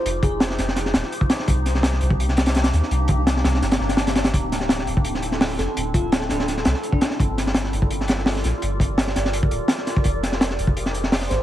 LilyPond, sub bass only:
\new Staff \with { instrumentName = "Sub bass" } { \clef bass \time 4/4 \key d \phrygian \tempo 4 = 168 f,,4. f,,4 ees,,8 r4 | c,4. c,2 ees,8 | c,4. c,8 g,,8 g,,4. | d,,4. d,,2 f,,8 |
d,,4. d,,4 c,8 r4 | g,,4. g,,2 bes,,8 | g,,4. g,,4 d,,8 r4 | f,,4. f,,2 aes,,8 | }